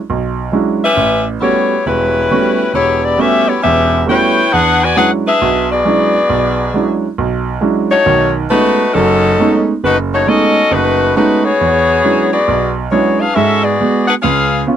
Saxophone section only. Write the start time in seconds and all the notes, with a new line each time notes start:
0.84 C#4 G4 B4 E5
1.41 B3 E4 G4 C#5
1.86 G3 C#4 E4 B4
2.75 B3 E4 G4 C#5
3.04 B3 E4 G4 D5
3.19 C#4 G4 B4 E5
3.48 B3 E4 G4 C#5
3.63 C#4 G4 B4 E5
4.10 E4 B4 C#5 G5
4.52 D4 G#4 B4 F#5
4.84 F#4 B4 D5 G#5
4.97 D4 G#4 B4 F#5
5.27 D4 G#4 B4 E5
5.72 B3 F#4 G#4 D5
7.91 A3 D#4 F#4 C#5
8.50 A3 D#4 F#4 B4
8.93 F#3 C#4 D#4 A4
9.84 A3 D#4 F#4 B4
10.14 A3 D#4 F#4 C#5
10.28 C#4 F#4 A4 D#5
10.72 A3 D#4 F#4 B4
11.16 A3 D#4 F#4 B4
11.44 B3 F#4 G#4 C#5
12.33 B3 F#4 G#4 D5
12.91 B3 F#4 G#4 C#5
13.20 D4 G#4 B4 F5
13.35 C#4 F#4 A4 E5
13.64 B3 F#4 G#4 D5
14.07 D4 G#4 B4 F#5
14.22 C#4 G#4 B4 F5